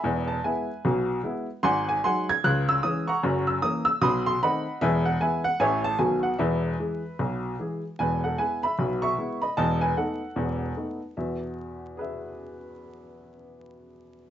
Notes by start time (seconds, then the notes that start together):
Already playing: E5 G#5 B5
0.04 E1 E2
0.28 A5
0.44 G#3 B3 E4 B4 E5 G#5
0.85 B1 B2
1.23 G#3 B3 E4
1.63 G#1 G#2 F#5 G#5 C6
1.89 G#5
2.04 F#3 G#3 D#4 F#5 G#5 C6
2.29 G#6
2.44 C#2 C#3 F#6
2.69 E6
2.83 E3 G#3 C#4 D#6
3.07 F#5 A#5 C#6
3.23 F#1 F#2
3.47 E6
3.62 E3 A#3 C#4 D#6
3.85 E6
4.01 B1 B2 B5 C6 D#6
4.26 C6
4.43 D#3 A3 C4 D#5 F#5 B5
4.81 E1 E2 G#4 B4 E5
5.05 F#5
5.21 E3 G#3 B3 B4 E5 G#5
5.44 F#5
5.60 A1 A2 E3 A3 C#4 C#5 E5 G#5
5.84 A5
5.99 B1 B2 D#3 A3 F#4 G#5
6.23 F#5
6.38 E1 E2 G#4 B4 E5
6.80 E3 G#3 G#4
7.19 B1 B2
7.59 E3 G#3 G#4
7.99 E1 E2 B4 G#5
8.24 A4 F#5
8.38 G#3 B3 E4 B4 G#5
8.63 E5 B5
8.78 B1 B2
9.02 E5 C#6
9.18 G#3 B3 E4
9.42 D#5 B5
9.57 E1 E2 D#5 A5
9.81 B4 G#5
9.97 A3 B3 D#4 A4 F#5
10.36 E1 E2
10.77 A3 B3 D#4
11.17 E2 B2 E5
11.97 G#4 B4
12.01 E5